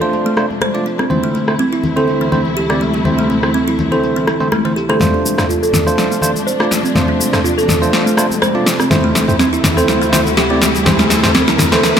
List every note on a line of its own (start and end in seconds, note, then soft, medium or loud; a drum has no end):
0.00 1.06 C3 medium
0.00 1.06 F3 medium
0.00 1.06 A3 medium
0.00 0.34 A3 medium
0.00 1.06 D4 medium
0.00 0.34 D4 medium
0.00 0.34 F4 medium
0.00 0.34 C5 loud
0.00 0.12 D5 medium
0.00 cabasa soft
0.13 muted conga soft
0.13 cabasa soft
0.26 0.36 A3 medium
0.26 cabasa soft
0.37 0.45 A3 medium
0.37 0.45 D4 medium
0.37 0.45 F4 medium
0.37 0.45 C5 medium
0.37 cross-stick medium
0.37 muted conga soft
0.37 cabasa medium
0.50 high conga medium
0.50 cabasa soft
0.61 0.74 C5 loud
0.61 cross-stick medium
0.61 high conga medium
0.61 cabasa soft
0.74 0.85 A3 medium
0.74 0.85 D4 medium
0.74 0.85 F4 medium
0.74 0.85 D5 medium
0.74 muted conga soft
0.86 0.98 D4 medium
0.86 cabasa medium
0.99 1.09 C4 medium
0.99 cross-stick medium
0.99 muted conga medium
0.99 cabasa soft
1.10 4.97 D2 medium
1.10 4.97 C3 medium
1.10 1.45 D3 medium
1.10 4.97 E3 medium
1.10 1.45 A3 medium
1.10 4.97 A3 medium
1.10 1.45 C4 medium
1.10 1.45 E4 medium
1.10 4.97 E4 medium
1.10 1.45 C5 medium
1.10 high conga medium
1.10 low conga loud
1.10 cabasa soft
1.23 1.34 A3 medium
1.23 muted conga soft
1.34 1.47 A3 medium
1.34 high conga medium
1.34 cabasa medium
1.48 1.54 D3 medium
1.48 1.55 A3 medium
1.48 1.55 C4 medium
1.48 1.55 E4 medium
1.48 1.54 C5 medium
1.48 cross-stick medium
1.48 cabasa soft
1.59 1.66 C4 medium
1.59 muted conga soft
1.59 cabasa soft
1.73 1.82 E4 loud
1.73 cabasa soft
1.84 muted conga soft
1.84 low conga medium
1.84 cabasa medium
1.96 2.29 D3 medium
1.96 2.29 A3 medium
1.96 2.29 C4 medium
1.96 2.29 E4 medium
1.96 2.07 A4 medium
1.96 2.29 C5 loud
1.96 cabasa soft
2.07 muted conga soft
2.07 high conga medium
2.07 cabasa soft
2.21 2.31 E3 loud
2.21 cabasa soft
2.32 2.40 D3 medium
2.32 2.40 A3 medium
2.32 2.40 C4 medium
2.32 2.40 E4 medium
2.32 2.40 C5 medium
2.32 muted conga soft
2.32 low conga medium
2.32 cabasa medium
2.45 high conga medium
2.45 cabasa soft
2.57 2.69 G4 loud
2.57 cabasa soft
2.69 2.80 D3 medium
2.69 2.80 A3 medium
2.69 2.80 C4 medium
2.69 2.80 E4 medium
2.69 2.80 D5 medium
2.69 cross-stick medium
2.69 muted conga soft
2.80 2.93 A3 medium
2.80 high conga medium
2.80 cabasa medium
2.94 3.04 G3 medium
2.94 muted conga soft
2.94 cabasa soft
3.05 3.40 D3 medium
3.05 3.40 A3 medium
3.05 3.40 C4 medium
3.05 3.40 E4 medium
3.05 3.40 C5 medium
3.05 high conga medium
3.05 low conga medium
3.05 cabasa soft
3.18 3.29 A3 loud
3.18 muted conga medium
3.18 cabasa soft
3.30 3.42 A3 medium
3.30 high conga medium
3.30 cabasa medium
3.43 3.50 D3 medium
3.43 3.50 A3 medium
3.43 3.50 C4 medium
3.43 3.50 E4 medium
3.43 3.50 C5 medium
3.43 cross-stick medium
3.43 cabasa soft
3.54 3.61 C4 medium
3.54 muted conga soft
3.54 cabasa soft
3.68 3.78 E4 loud
3.68 cabasa soft
3.79 muted conga soft
3.79 low conga loud
3.79 cabasa medium
3.92 4.25 D3 medium
3.92 4.25 A3 medium
3.92 4.25 C4 medium
3.92 4.25 E4 medium
3.92 4.03 A4 medium
3.92 4.25 C5 loud
3.92 cabasa soft
4.03 muted conga soft
4.03 cabasa soft
4.16 4.26 E3 medium
4.16 cabasa soft
4.27 4.35 E4 medium
4.27 cross-stick medium
4.27 muted conga medium
4.27 cabasa medium
4.40 4.47 D3 medium
4.40 4.47 A3 medium
4.40 4.47 C4 medium
4.40 4.47 E4 medium
4.40 4.47 C5 loud
4.40 high conga medium
4.40 cabasa soft
4.52 4.64 A3 loud
4.52 cross-stick medium
4.52 high conga medium
4.52 cabasa soft
4.65 4.72 D3 medium
4.65 4.76 E3 loud
4.65 4.72 A3 medium
4.65 4.72 C4 medium
4.65 4.72 E4 medium
4.65 4.72 C5 medium
4.65 muted conga soft
4.76 4.83 G4 medium
4.76 cabasa medium
4.89 4.98 D3 medium
4.89 4.98 A3 medium
4.89 4.98 C4 medium
4.89 4.98 E4 medium
4.89 5.00 A4 medium
4.89 4.98 C5 loud
4.89 cross-stick medium
4.89 muted conga soft
4.89 cabasa soft
5.00 12.00 C3 medium
5.00 8.87 F3 medium
5.00 12.00 A3 medium
5.00 5.35 A3 medium
5.00 8.87 D4 medium
5.00 5.35 D4 medium
5.00 5.35 F4 medium
5.00 5.35 C5 medium
5.00 snare soft
5.00 mid tom medium
5.00 riser medium
5.00 high conga medium
5.00 low conga loud
5.00 cabasa soft
5.14 5.24 D4 loud
5.14 muted conga medium
5.25 5.37 D4 medium
5.25 high conga medium
5.25 cabasa medium
5.38 5.45 A3 medium
5.38 5.45 D4 medium
5.38 5.45 F4 medium
5.38 5.45 C5 medium
5.38 cross-stick medium
5.38 snare soft
5.38 mid tom medium
5.38 cabasa soft
5.49 5.57 F4 medium
5.49 muted conga soft
5.49 cabasa soft
5.63 5.73 A4 loud
5.63 cabasa soft
5.73 snare soft
5.73 mid tom medium
5.73 muted conga medium
5.73 low conga loud
5.73 cabasa medium
5.87 6.20 A3 medium
5.87 6.20 D4 medium
5.87 6.20 F4 medium
5.87 6.20 C5 loud
5.87 5.98 D5 medium
5.87 cabasa soft
5.98 snare medium
5.98 muted conga soft
5.98 high conga medium
5.98 cabasa soft
6.11 6.21 A3 loud
6.11 cabasa soft
6.22 6.30 A3 medium
6.22 6.30 D4 medium
6.22 6.30 F4 medium
6.22 6.30 C5 medium
6.22 muted conga soft
6.22 low conga medium
6.22 cabasa medium
6.35 high conga medium
6.35 cabasa soft
6.47 6.59 C5 loud
6.47 cabasa medium
6.60 6.71 A3 medium
6.60 6.71 D4 medium
6.60 6.71 F4 medium
6.60 6.70 F4 medium
6.60 6.71 D5 medium
6.60 cross-stick medium
6.60 muted conga soft
6.71 6.83 D4 medium
6.71 snare medium
6.71 high conga medium
6.71 cabasa medium
6.83 6.94 C4 medium
6.83 muted conga medium
6.83 cabasa soft
6.95 7.30 A3 medium
6.95 7.30 D4 medium
6.95 7.30 F4 medium
6.95 7.30 C5 medium
6.95 snare medium
6.95 mid tom medium
6.95 high conga medium
6.95 low conga loud
6.95 cabasa medium
7.08 7.19 D4 loud
7.08 muted conga medium
7.20 7.32 D4 medium
7.20 high conga medium
7.20 cabasa medium
7.33 7.40 A3 medium
7.33 7.40 D4 medium
7.33 7.40 F4 medium
7.33 7.40 C5 medium
7.33 cross-stick medium
7.33 snare medium
7.33 mid tom medium
7.33 cabasa soft
7.44 7.52 F4 medium
7.44 muted conga soft
7.44 cabasa medium
7.58 7.68 A4 loud
7.58 cabasa soft
7.68 snare medium
7.68 mid tom medium
7.68 muted conga medium
7.68 low conga loud
7.68 cabasa medium
7.82 8.15 A3 medium
7.82 8.15 D4 medium
7.82 8.15 F4 medium
7.82 8.15 C5 loud
7.82 7.93 D5 medium
7.82 cabasa soft
7.93 snare medium
7.93 muted conga soft
7.93 cabasa medium
8.06 8.16 A3 loud
8.06 cabasa soft
8.17 8.25 A3 medium
8.17 8.25 D4 medium
8.17 8.25 F4 medium
8.17 8.25 C5 medium
8.17 cross-stick medium
8.17 muted conga medium
8.17 cabasa loud
8.30 high conga medium
8.30 cabasa soft
8.42 8.54 C5 loud
8.42 cross-stick medium
8.42 high conga medium
8.42 cabasa medium
8.55 8.66 A3 medium
8.55 8.66 D4 medium
8.55 8.66 F4 medium
8.55 8.65 F4 medium
8.55 8.66 D5 medium
8.55 muted conga soft
8.66 8.78 D4 medium
8.66 snare medium
8.66 cabasa medium
8.79 8.90 C4 medium
8.79 cross-stick medium
8.79 muted conga medium
8.79 cabasa soft
8.91 12.00 D2 medium
8.91 12.00 E3 medium
8.91 9.25 A3 medium
8.91 9.25 C4 medium
8.91 12.00 E4 medium
8.91 9.25 E4 medium
8.91 9.25 C5 medium
8.91 snare medium
8.91 mid tom medium
8.91 high conga medium
8.91 low conga loud
8.91 cabasa medium
9.03 9.14 A3 loud
9.03 muted conga soft
9.15 9.27 A3 medium
9.15 snare medium
9.15 high conga medium
9.15 cabasa medium
9.28 9.35 A3 medium
9.28 9.35 C4 medium
9.28 9.35 E4 medium
9.28 9.35 C5 medium
9.28 mid tom medium
9.28 cabasa soft
9.39 9.47 C4 loud
9.39 snare medium
9.39 muted conga soft
9.39 cabasa medium
9.53 9.63 E4 loud
9.53 cabasa soft
9.64 snare medium
9.64 mid tom medium
9.64 muted conga medium
9.64 low conga loud
9.64 cabasa loud
9.77 10.10 A3 medium
9.77 10.10 C4 medium
9.77 10.10 E4 medium
9.77 9.88 A4 medium
9.77 10.10 C5 loud
9.77 cabasa soft
9.88 snare medium
9.88 muted conga soft
9.88 high conga medium
9.88 cabasa medium
10.02 10.12 E3 loud
10.02 cabasa soft
10.12 10.20 A3 medium
10.12 10.20 C4 medium
10.12 10.21 E4 medium
10.12 10.20 C5 medium
10.12 snare medium
10.12 muted conga soft
10.12 low conga medium
10.12 cabasa loud
10.26 high conga medium
10.26 cabasa soft
10.37 10.50 G4 loud
10.37 snare medium
10.37 cabasa medium
10.49 10.61 A3 medium
10.49 10.61 C4 medium
10.49 10.60 C4 medium
10.49 10.61 E4 medium
10.49 10.61 D5 medium
10.49 muted conga soft
10.61 10.73 A3 medium
10.61 snare medium
10.61 high conga medium
10.61 cabasa medium
10.75 10.85 G3 medium
10.75 muted conga medium
10.75 cabasa soft
10.86 11.20 A3 medium
10.86 11.20 C4 medium
10.86 11.20 E4 medium
10.86 11.20 C5 medium
10.86 snare medium
10.86 mid tom medium
10.86 high conga medium
10.86 low conga loud
10.86 cabasa medium
10.99 11.09 A3 loud
10.99 snare medium
10.99 muted conga medium
10.99 cabasa soft
11.10 11.22 A3 medium
11.10 snare loud
11.10 high conga medium
11.10 cabasa loud
11.23 11.30 A3 medium
11.23 11.30 C4 medium
11.23 11.30 E4 medium
11.23 11.30 C5 medium
11.23 snare medium
11.23 mid tom medium
11.23 cabasa soft
11.34 11.42 C4 loud
11.34 snare medium
11.34 muted conga soft
11.34 cabasa medium
11.48 11.58 E4 loud
11.48 snare medium
11.48 cabasa soft
11.58 snare loud
11.58 mid tom medium
11.58 muted conga medium
11.58 low conga loud
11.58 cabasa loud
11.72 12.00 A3 loud
11.72 12.00 C4 medium
11.72 12.00 E4 medium
11.72 11.83 A4 medium
11.72 12.00 C5 loud
11.72 snare medium
11.72 cabasa soft
11.83 snare loud
11.83 swell medium
11.83 muted conga soft
11.83 cabasa medium
11.97 12.00 E3 loud
11.97 snare medium